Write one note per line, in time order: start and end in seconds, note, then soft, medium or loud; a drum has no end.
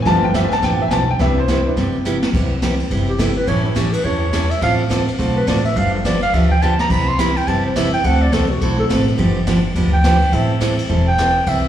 0.02 0.28 G1 loud
0.02 0.25 D3 medium
0.02 0.25 F3 medium
0.02 0.49 A3 medium
0.02 0.49 B3 medium
0.02 0.25 B3 medium
0.02 0.05 G#5 medium
0.02 brush sweep medium
0.02 kick soft
0.02 snare soft
0.06 0.26 D4 medium
0.06 0.50 F4 medium
0.06 0.26 G4 medium
0.06 0.23 A5 loud
0.24 0.34 G5 medium
0.34 0.58 G1 medium
0.34 0.45 D3 medium
0.34 0.45 F3 medium
0.34 0.45 B3 medium
0.34 0.46 D4 medium
0.34 0.46 G4 medium
0.34 0.52 E5 medium
0.34 kick soft
0.34 snare medium
0.34 hi-hat pedal medium
0.49 0.50 G#5 medium
0.49 snare soft
0.53 0.63 A5 loud
0.62 0.87 A1 medium
0.62 0.82 D3 medium
0.62 0.82 F3 medium
0.62 0.82 B3 medium
0.62 0.82 D4 medium
0.62 0.82 G4 medium
0.62 0.80 G5 medium
0.62 brush sweep soft
0.62 kick soft
0.62 snare soft
0.82 0.91 E5 medium
0.88 1.15 B1 medium
0.88 1.02 D3 medium
0.88 1.02 F3 medium
0.88 1.02 B3 medium
0.88 1.02 D4 medium
0.88 1.02 G4 medium
0.88 0.90 G#5 medium
0.88 kick soft
0.88 snare medium
0.88 hi-hat pedal medium
0.93 1.09 A5 medium
1.11 1.20 G5 medium
1.19 1.65 C2 loud
1.19 1.39 C3 medium
1.19 1.39 G3 medium
1.19 1.40 B3 medium
1.19 1.39 B3 medium
1.19 1.41 D4 medium
1.19 1.39 E4 medium
1.19 1.41 E4 medium
1.19 1.40 G4 medium
1.19 1.37 E5 loud
1.19 brush sweep medium
1.19 kick soft
1.19 snare soft
1.39 1.94 C5 medium
1.48 1.59 C3 medium
1.48 1.60 G3 medium
1.48 1.60 B3 medium
1.48 1.60 E4 medium
1.48 1.60 G4 medium
1.48 kick soft
1.48 snare medium
1.48 hi-hat pedal medium
1.66 1.76 B3 medium
1.66 1.76 D4 soft
1.66 1.76 E4 medium
1.76 2.22 G1 medium
1.76 1.96 C3 medium
1.76 1.96 G3 medium
1.76 1.97 B3 medium
1.76 1.97 E4 medium
1.76 1.97 G4 medium
1.76 brush sweep medium
1.76 kick soft
1.76 snare medium
2.05 2.16 C3 medium
2.05 2.16 G3 medium
2.05 2.16 B3 medium
2.05 2.17 E4 medium
2.05 2.17 G4 medium
2.05 hi-hat pedal medium
2.22 snare medium
2.33 2.79 C2 medium
2.33 2.53 C3 medium
2.33 2.53 G3 medium
2.33 2.54 B3 medium
2.33 2.54 E4 medium
2.33 2.54 G4 medium
2.33 kick medium
2.33 crash medium
2.62 2.73 C3 medium
2.62 2.73 G3 medium
2.62 2.74 B3 medium
2.62 2.74 E4 medium
2.62 2.74 G4 medium
2.62 kick soft
2.62 snare medium
2.62 hi-hat pedal medium
2.62 ride medium
2.80 ride soft
2.91 3.36 G1 medium
2.91 3.10 C3 medium
2.91 3.10 G3 medium
2.91 3.11 B3 medium
2.91 3.11 E4 medium
2.91 3.11 G4 medium
2.91 kick soft
2.91 ride medium
3.09 3.21 G4 medium
3.18 3.30 C3 medium
3.18 3.30 G3 medium
3.18 3.30 B3 medium
3.18 3.30 E4 medium
3.18 3.31 G4 loud
3.18 3.36 A4 medium
3.18 kick soft
3.18 snare medium
3.18 hi-hat pedal medium
3.18 ride medium
3.37 3.50 B4 medium
3.47 3.93 A1 medium
3.47 3.67 E3 medium
3.47 3.67 G3 medium
3.47 3.67 C#4 medium
3.47 3.68 E4 medium
3.47 3.68 A4 medium
3.47 3.64 C#5 loud
3.47 kick soft
3.47 ride medium
3.64 3.77 E4 medium
3.75 3.87 E3 medium
3.75 3.87 G3 medium
3.75 3.87 C#4 medium
3.75 3.87 E4 medium
3.75 3.94 G4 medium
3.75 3.87 A4 medium
3.75 kick soft
3.75 snare medium
3.75 hi-hat pedal medium
3.75 ride medium
3.93 4.06 B4 medium
3.93 ride medium
4.03 4.50 E2 medium
4.03 4.24 E3 medium
4.03 4.24 G3 medium
4.03 4.24 C#4 medium
4.03 4.24 E4 medium
4.03 4.25 A4 medium
4.03 4.52 C#5 medium
4.03 kick soft
4.33 4.44 E3 medium
4.33 4.44 G3 medium
4.33 4.44 C#4 medium
4.33 4.45 E4 medium
4.33 4.45 A4 medium
4.33 kick soft
4.33 snare medium
4.33 hi-hat pedal medium
4.33 ride medium
4.51 4.62 E5 medium
4.51 ride medium
4.61 5.07 A1 medium
4.61 4.81 D3 medium
4.61 4.81 A3 medium
4.61 4.82 C4 medium
4.61 4.82 F4 medium
4.61 4.82 A4 medium
4.61 4.73 F5 medium
4.61 kick soft
4.61 ride medium
4.89 5.01 D3 medium
4.89 5.01 A3 medium
4.89 5.01 C4 medium
4.89 5.01 F4 medium
4.89 5.01 A4 medium
4.89 kick soft
4.89 snare medium
4.89 hi-hat pedal medium
4.89 ride medium
5.08 ride medium
5.18 5.43 B1 medium
5.18 5.38 D3 medium
5.18 5.38 A3 medium
5.18 5.38 C4 medium
5.18 5.39 F4 medium
5.18 5.39 A4 medium
5.18 kick soft
5.18 ride medium
5.37 5.50 B4 medium
5.47 5.72 A1 medium
5.47 5.58 D3 medium
5.47 5.58 A3 medium
5.47 5.59 C4 medium
5.47 5.59 F4 medium
5.47 5.59 A4 medium
5.47 5.65 D5 medium
5.47 kick soft
5.47 snare medium
5.47 hi-hat pedal medium
5.47 ride medium
5.65 5.79 E5 medium
5.65 ride soft
5.76 6.22 G1 loud
5.76 5.96 D3 medium
5.76 5.96 F3 medium
5.76 5.96 B3 medium
5.76 5.96 D4 medium
5.76 5.96 G4 medium
5.76 5.94 F5 medium
5.76 kick soft
5.76 ride medium
5.94 6.07 A4 medium
6.04 6.16 D3 medium
6.04 6.16 F3 medium
6.04 6.16 B3 medium
6.04 6.16 D4 medium
6.04 6.16 G4 medium
6.04 6.22 D5 medium
6.04 kick soft
6.04 snare medium
6.04 hi-hat pedal medium
6.04 ride medium
6.22 6.36 F5 medium
6.22 ride soft
6.33 6.79 D2 medium
6.33 6.53 D3 medium
6.33 6.53 F3 medium
6.33 6.53 B3 medium
6.33 6.53 D4 medium
6.33 6.53 G4 medium
6.33 6.51 E5 medium
6.33 kick soft
6.33 ride medium
6.51 6.64 G5 medium
6.62 6.73 D3 medium
6.62 6.73 F3 medium
6.62 6.74 B3 medium
6.62 6.74 D4 medium
6.62 6.74 G4 medium
6.62 6.80 A5 medium
6.62 hi-hat pedal medium
6.79 6.92 A#5 medium
6.79 snare medium
6.90 7.36 C2 medium
6.90 7.10 C3 medium
6.90 7.10 G3 medium
6.90 7.10 B3 medium
6.90 7.10 E4 medium
6.90 7.10 G4 medium
6.90 7.10 B5 medium
6.90 kick medium
6.90 crash medium
7.08 7.21 C6 loud
7.19 7.30 C3 medium
7.19 7.30 G3 medium
7.19 7.30 B3 medium
7.19 7.30 E4 medium
7.19 7.30 G4 medium
7.19 7.39 B5 medium
7.19 kick soft
7.19 snare medium
7.19 hi-hat pedal medium
7.19 ride medium
7.37 7.50 G5 medium
7.37 ride soft
7.47 7.93 G1 medium
7.47 7.67 C3 medium
7.47 7.67 G3 medium
7.47 7.67 B3 medium
7.47 7.67 E4 medium
7.47 7.67 G4 medium
7.47 7.65 A5 medium
7.47 kick soft
7.47 ride medium
7.66 7.78 C5 medium
7.76 7.87 C3 medium
7.76 7.87 G3 medium
7.76 7.87 B3 medium
7.76 7.88 E4 medium
7.76 7.88 G4 medium
7.76 7.93 E5 medium
7.76 kick soft
7.76 snare medium
7.76 hi-hat pedal medium
7.76 ride medium
7.93 8.07 G5 loud
7.93 ride soft
8.04 8.27 D2 loud
8.04 8.24 D3 medium
8.04 8.24 A3 medium
8.04 8.24 C4 medium
8.04 8.25 F#4 medium
8.04 8.24 A4 medium
8.04 8.24 F#5 medium
8.04 kick soft
8.04 ride medium
8.22 8.35 D5 medium
8.32 8.57 C2 medium
8.32 8.44 D3 medium
8.32 8.44 A3 medium
8.32 8.44 C4 medium
8.32 8.44 F#4 medium
8.32 8.44 A4 medium
8.32 8.53 A4 medium
8.32 kick soft
8.32 snare medium
8.32 hi-hat pedal medium
8.32 ride medium
8.51 8.65 F#4 medium
8.61 8.86 B1 medium
8.61 8.81 D3 medium
8.61 8.81 A3 medium
8.61 8.81 C4 medium
8.61 8.79 E4 medium
8.61 8.81 F#4 medium
8.61 8.81 A4 medium
8.61 kick soft
8.61 ride medium
8.79 8.86 A4 loud
8.89 9.14 A1 medium
8.89 9.01 D3 medium
8.89 9.01 A3 medium
8.89 9.01 C4 medium
8.89 9.01 F#4 medium
8.89 9.02 A4 medium
8.89 kick soft
8.89 snare medium
8.89 hi-hat pedal medium
8.89 ride medium
9.08 ride soft
9.17 9.64 G1 loud
9.17 9.38 D3 medium
9.17 9.38 F3 medium
9.17 9.38 B3 medium
9.17 9.38 D4 medium
9.17 9.38 G4 medium
9.17 kick soft
9.17 ride medium
9.47 9.58 D3 medium
9.47 9.58 F3 medium
9.47 9.58 B3 medium
9.47 9.58 D4 medium
9.47 9.59 G4 medium
9.47 kick soft
9.47 snare medium
9.47 hi-hat pedal medium
9.47 ride medium
9.75 10.21 D2 medium
9.75 9.95 D3 medium
9.75 9.96 F3 medium
9.75 9.96 B3 medium
9.75 9.96 D4 medium
9.75 9.96 G4 medium
9.75 kick soft
9.75 ride medium
9.94 10.35 G5 loud
10.04 10.15 D3 medium
10.04 10.15 F3 medium
10.04 10.16 B3 medium
10.04 10.16 D4 medium
10.04 10.16 G4 loud
10.04 kick soft
10.04 snare medium
10.04 hi-hat pedal medium
10.04 ride medium
10.22 ride soft
10.32 10.78 A1 medium
10.32 10.52 E3 medium
10.32 10.52 G3 medium
10.32 10.52 C4 medium
10.32 10.53 E4 medium
10.32 10.53 A4 medium
10.32 10.79 E5 medium
10.32 kick soft
10.32 ride medium
10.60 10.72 E3 medium
10.60 10.72 G3 medium
10.60 10.72 C4 medium
10.60 10.72 E4 medium
10.60 10.73 A4 medium
10.60 kick soft
10.60 snare medium
10.60 hi-hat pedal medium
10.60 ride medium
10.79 ride medium
10.89 11.35 E1 medium
10.89 11.09 E3 medium
10.89 11.09 G3 medium
10.89 11.09 C4 medium
10.89 11.10 E4 medium
10.89 11.10 A4 medium
10.89 kick soft
11.08 11.50 G5 loud
11.18 11.29 E3 medium
11.18 11.29 G3 medium
11.18 11.30 C4 medium
11.18 11.30 E4 medium
11.18 11.30 A4 medium
11.18 kick soft
11.18 snare medium
11.18 hi-hat pedal medium
11.18 ride medium
11.46 11.68 C2 loud
11.46 11.66 C3 medium
11.46 11.66 G3 medium
11.46 11.67 B3 medium
11.46 11.67 E4 medium
11.46 11.67 G4 medium
11.46 11.68 E5 medium
11.46 kick soft
11.46 ride medium